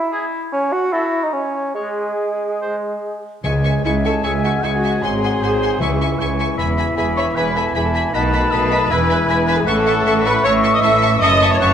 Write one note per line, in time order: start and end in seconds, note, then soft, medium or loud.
0.00 0.12 E4 medium
0.00 0.12 E5 medium
0.11 0.45 E4 medium
0.11 0.26 G#4 medium
0.52 0.74 C#4 medium
0.52 0.74 C#5 medium
0.72 0.94 F#4 medium
0.72 0.93 F#5 medium
0.92 1.25 E4 medium
0.92 1.26 F#4 medium
0.92 1.06 A4 soft
0.92 1.22 E5 medium
1.22 1.34 D#4 medium
1.22 1.27 D#5 medium
1.33 1.74 C#4 medium
1.33 1.75 C#5 medium
1.75 3.20 G#3 medium
1.75 2.11 G#3 soft
1.75 3.21 G#4 medium
1.75 1.90 C#5 soft
2.61 2.96 G#3 soft
2.61 2.76 C5 soft
3.44 3.79 C#2 medium
3.44 3.80 C#2 soft
3.44 4.00 C#3 medium
3.44 3.82 G#3 soft
3.44 4.99 C#4 soft
3.44 4.99 G#4 soft
3.44 3.52 E5 soft
3.44 3.81 G#5 soft
3.44 3.52 G#5 soft
3.44 3.52 C#6 soft
3.64 3.72 E5 soft
3.64 3.72 G#5 soft
3.64 3.72 C#6 soft
3.84 4.19 C#2 soft
3.84 4.24 G#3 soft
3.84 3.93 E4 medium
3.84 3.92 E5 soft
3.84 4.06 E5 medium
3.84 4.23 G#5 soft
3.84 3.92 G#5 soft
3.84 3.93 C#6 soft
4.05 4.13 A4 medium
4.05 4.13 E5 soft
4.05 4.13 G#5 soft
4.05 4.26 A5 medium
4.05 4.13 C#6 soft
4.23 4.58 C#2 soft
4.23 4.59 C#2 soft
4.23 4.62 G#3 soft
4.23 4.32 G#4 medium
4.23 4.66 E5 soft
4.23 4.32 E5 soft
4.23 4.62 G#5 soft
4.23 4.45 G#5 medium
4.23 4.32 G#5 soft
4.23 4.32 C#6 soft
4.43 4.52 F#4 medium
4.43 4.51 E5 soft
4.43 4.66 F#5 medium
4.43 4.51 G#5 soft
4.43 4.52 C#6 soft
4.63 4.98 C#2 soft
4.63 5.04 G#3 soft
4.63 4.67 E4 medium
4.63 4.71 E5 soft
4.63 4.72 E5 soft
4.63 4.71 G#5 soft
4.63 5.04 G#5 soft
4.63 5.44 G#5 medium
4.63 4.72 C#6 soft
4.72 5.02 F#4 medium
4.72 5.02 F#5 soft
4.83 4.91 E5 soft
4.83 4.91 G#5 soft
4.83 4.92 C#6 soft
5.02 5.37 G#1 medium
5.02 5.37 G#2 soft
5.02 5.82 F#3 soft
5.02 5.79 C4 soft
5.02 5.79 F#4 soft
5.02 6.39 G#4 medium
5.02 5.11 F#5 soft
5.02 6.36 G#5 medium
5.02 5.11 G#5 soft
5.02 5.82 C6 soft
5.02 5.11 C6 soft
5.23 5.31 F#5 soft
5.23 5.31 G#5 soft
5.23 5.31 C6 soft
5.42 5.76 G#1 soft
5.42 5.76 G#2 soft
5.42 5.81 C5 soft
5.42 5.51 F#5 soft
5.42 5.51 G#5 soft
5.42 5.51 C6 soft
5.62 5.70 F#5 soft
5.62 5.70 G#5 soft
5.62 5.69 C6 soft
5.80 6.15 C#2 medium
5.80 6.35 C#3 medium
5.80 6.57 E3 soft
5.80 6.58 C#4 soft
5.80 8.14 E4 soft
5.80 5.89 E5 soft
5.80 6.20 E5 soft
5.80 5.89 G#5 soft
5.80 6.57 C#6 soft
5.80 5.89 C#6 soft
6.00 6.09 E5 soft
6.00 6.09 G#5 soft
6.00 6.08 C#6 soft
6.19 6.54 C#2 soft
6.19 6.28 E5 soft
6.19 6.57 G#5 medium
6.19 6.28 G#5 soft
6.19 6.28 C#6 soft
6.39 6.47 E5 soft
6.39 6.47 G#5 soft
6.39 6.47 C#6 soft
6.57 6.93 E1 medium
6.57 6.93 E2 medium
6.57 6.96 E3 soft
6.57 8.10 B3 soft
6.57 7.37 E5 medium
6.57 6.67 E5 soft
6.57 6.67 G#5 soft
6.57 6.96 B5 soft
6.57 6.66 B5 soft
6.78 6.85 E5 soft
6.78 6.85 G#5 soft
6.78 6.86 B5 soft
6.96 7.32 E1 medium
6.96 7.31 E2 medium
6.96 7.35 E3 medium
6.96 7.05 G#4 medium
6.96 7.05 E5 soft
6.96 7.15 G#5 medium
6.96 7.05 G#5 soft
6.96 7.35 B5 soft
6.96 7.06 B5 soft
7.16 7.25 C#5 medium
7.16 7.25 E5 soft
7.16 7.25 G#5 soft
7.16 7.25 B5 soft
7.16 7.22 C#6 medium
7.35 7.70 E1 medium
7.35 7.70 E2 medium
7.35 7.74 E3 soft
7.35 7.55 B4 medium
7.35 7.44 E5 soft
7.35 8.13 G#5 medium
7.35 7.44 G#5 soft
7.35 7.54 B5 medium
7.35 7.74 B5 medium
7.35 7.44 B5 soft
7.55 7.75 A4 medium
7.55 7.63 E5 soft
7.55 7.64 G#5 soft
7.55 7.74 A5 medium
7.55 7.64 B5 soft
7.74 8.09 E1 medium
7.74 8.09 E2 medium
7.74 8.15 E3 soft
7.74 7.80 G#4 medium
7.74 7.82 E5 soft
7.74 7.83 G#5 medium
7.74 7.83 G#5 soft
7.74 7.83 B5 soft
7.74 8.16 B5 soft
7.83 7.93 A4 medium
7.83 8.12 A5 medium
7.94 8.02 E5 soft
7.94 8.02 G#5 soft
7.94 8.02 B5 soft
8.12 8.48 B1 medium
8.12 8.47 B2 medium
8.12 8.92 D#3 medium
8.12 8.88 A3 soft
8.12 8.88 D#4 soft
8.12 9.45 B4 medium
8.12 8.22 D#5 medium
8.12 8.53 F#5 medium
8.12 8.92 A5 medium
8.12 8.22 A5 medium
8.12 9.44 B5 medium
8.12 8.22 B5 medium
8.33 8.41 D#5 soft
8.33 8.41 A5 soft
8.33 8.40 B5 soft
8.51 8.86 B1 medium
8.51 8.86 B2 medium
8.51 8.90 D#5 medium
8.51 8.60 D#5 soft
8.51 8.60 A5 soft
8.51 8.59 B5 medium
8.71 8.79 D#5 soft
8.71 8.79 A5 soft
8.71 8.79 B5 medium
8.89 9.24 E1 medium
8.89 9.24 E2 medium
8.89 9.66 E3 medium
8.89 9.66 G#3 medium
8.89 9.66 E4 medium
8.89 9.28 E5 medium
8.89 8.98 E5 soft
8.89 8.98 G#5 medium
8.89 9.50 G#5 medium
8.89 8.98 B5 medium
9.10 9.17 E5 soft
9.10 9.18 G#5 medium
9.10 9.18 B5 soft
9.28 9.63 E1 medium
9.28 9.62 E2 medium
9.28 9.36 E5 soft
9.28 9.36 G#5 medium
9.28 9.66 G#5 medium
9.28 9.37 B5 soft
9.47 9.56 B4 medium
9.47 9.56 E5 medium
9.47 9.55 G#5 medium
9.47 9.57 B5 medium
9.47 9.56 B5 medium
9.56 9.67 G#4 medium
9.56 9.66 G#5 medium
9.66 10.02 A1 medium
9.66 10.01 A2 medium
9.66 11.73 E3 medium
9.66 10.41 A3 medium
9.66 10.41 C#4 medium
9.66 10.24 A4 medium
9.66 9.75 E5 medium
9.66 10.43 F#5 medium
9.66 10.27 A5 medium
9.66 9.75 A5 medium
9.66 9.75 C#6 medium
9.66 11.18 C#6 medium
9.86 9.94 E5 medium
9.86 9.95 A5 medium
9.86 9.95 C#6 soft
10.05 10.40 A1 medium
10.05 10.40 A2 medium
10.05 10.14 E5 medium
10.05 10.14 A5 medium
10.05 10.14 C#6 medium
10.25 10.45 B4 medium
10.25 10.33 E5 medium
10.25 10.33 A5 medium
10.25 10.46 B5 medium
10.25 10.34 C#6 medium
10.44 10.79 A1 medium
10.44 10.79 A2 medium
10.44 10.82 A3 medium
10.44 10.83 C#4 medium
10.44 10.52 C#5 medium
10.44 10.52 E5 medium
10.44 11.32 E5 medium
10.44 10.52 A5 medium
10.44 10.75 C#6 medium
10.44 10.53 C#6 medium
10.64 10.72 E5 medium
10.64 10.72 A5 medium
10.64 10.71 C#6 medium
10.73 10.83 D#5 medium
10.73 10.82 D#6 medium
10.82 11.17 A1 medium
10.82 11.17 A2 medium
10.82 11.21 A3 medium
10.82 11.21 C#4 medium
10.82 11.21 E5 medium
10.82 10.91 E5 medium
10.82 10.91 A5 medium
10.82 10.91 C#6 medium
10.82 11.20 E6 medium
11.02 11.10 E5 medium
11.02 11.10 A5 medium
11.02 11.10 C#6 medium
11.21 11.56 F#1 medium
11.21 11.56 F#2 medium
11.21 11.60 A3 medium
11.21 11.60 C#4 medium
11.21 11.50 D#5 loud
11.21 11.31 E5 medium
11.21 11.73 A5 medium
11.21 11.30 A5 medium
11.21 11.30 C#6 medium
11.21 11.52 D#6 medium
11.41 11.50 E5 medium
11.41 11.50 A5 medium
11.41 11.49 C#6 soft
11.50 11.59 C#5 medium
11.50 11.60 C#6 medium
11.60 11.73 F#1 medium
11.60 11.73 F#2 medium
11.60 11.73 A3 medium
11.60 11.73 C#4 medium
11.60 11.73 C#5 medium
11.60 11.69 E5 medium
11.60 11.73 F#5 medium
11.60 11.69 A5 medium
11.60 11.73 C#6 medium
11.60 11.69 C#6 medium